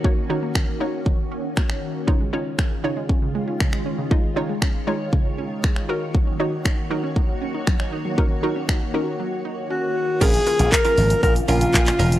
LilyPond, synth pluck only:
\new Staff \with { instrumentName = "Synth pluck" } { \time 4/4 \key bes \minor \tempo 4 = 118 <ees' ges' des''>16 r16 <ees' ges' des''>8 r8 <ees' ges' des''>4~ <ees' ges' des''>16 r4 r16 | <ees' f' des''>16 r16 <ees' f' des''>8 r8 <ees' f' des''>4~ <ees' f' des''>16 r4 r16 | <ees' f' ees''>16 r16 <ees' f' des''>8 r8 <ees' f' des''>4~ <ees' f' des''>16 r8. <ees' ges' bes'>8~ | <ees' ges' bes'>16 r16 <ees' ges' des''>8 r8 <ees' ges' bes'>4~ <ees' ges' bes'>16 r4 r16 |
<ees' ges' bes'>16 r16 <ees' ges' bes'>8 r8 <ees' ges' bes'>4~ <ees' ges' bes'>16 r4 r16 | <des' f' bes'>16 r16 <des' f' bes'>8 r16 <des' f' bes'>8 r16 <des' f' bes'>16 r16 <des' f' bes'>16 r16 <des' f' bes'>8 r8 | }